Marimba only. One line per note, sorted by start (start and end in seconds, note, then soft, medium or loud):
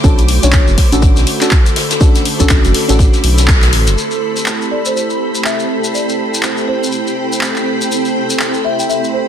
4.71 4.86 D5 medium
4.86 4.95 C5 medium
4.96 5.46 C5 medium
5.45 5.91 E5 loud
5.94 6.40 D5 medium
6.68 7.62 C5 loud
8.65 8.80 E5 medium
8.79 8.84 G5 medium
8.89 9.14 E5 medium
9.14 9.28 C5 medium